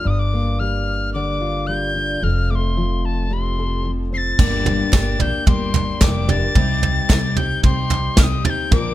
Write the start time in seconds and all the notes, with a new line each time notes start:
0.04 G1 G2 D4 D6
0.10 D#6
0.19 D6
0.34 A#3
0.60 G3 F6
1.14 D3 D4 D6
1.41 F4
1.67 G3 G6
1.96 D4
2.22 F1 F2 C4 F6
2.50 A3 D6
2.55 C6
2.77 F3
3.05 A5
3.30 C3 C4 C6
3.59 A4
3.85 F3
4.13 C4 C7
4.17 A6
4.39 G1 G2 D3 G3 A#3 D4 G4, kick, floor tom, crash
4.66 floor tom
4.92 G1 G3 A#3 D4 G4, kick, snare, clap, floor tom, tambourine
5.19 A#1 G3 A#3 D4 G4 G6, floor tom
5.46 G1 G3 A#3 D4 G4 C6, kick, floor tom
5.74 clap, floor tom
6.00 F1 G3 A#3 D4 G4 D6, kick, snare, clap, floor tom, tambourine
6.28 G3 A#3 D4 G4 A6, floor tom
6.55 C2 C3 G3 C4 D#4 G4, kick, floor tom
6.83 floor tom
7.09 C2 G3 C4 D#4 G4, kick, snare, clap, floor tom, tambourine
7.36 C4 D#4 G4 G6, floor tom
7.63 C2 G3 C4 D#4 G4 C6, kick, floor tom
7.90 clap, floor tom
8.17 C2 G3 C4 D#4 G4 F6, kick, snare, clap, floor tom, tambourine
8.23 D#6
8.44 C4 D#4 G4 A6, floor tom
8.50 G6
8.72 A#1 A#2 D3 F3 A#3 D4 A#4 D6, kick, floor tom